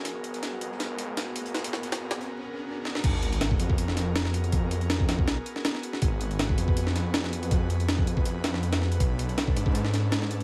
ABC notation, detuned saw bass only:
X:1
M:4/4
L:1/8
Q:"Swing 16ths" 1/4=161
K:G#dor
V:1 name="Detuned saw bass" clef=bass
G,,,3 E,,4- E,,- | E,,3 E,, z4 | G,,,3 E,,4- E,,- | E,,3 E,, B,,, z3 |
G,,,3 E,,4- E,,- | E,,3 E,,2 E,,3 | B,,,3 G,,4- G,, |]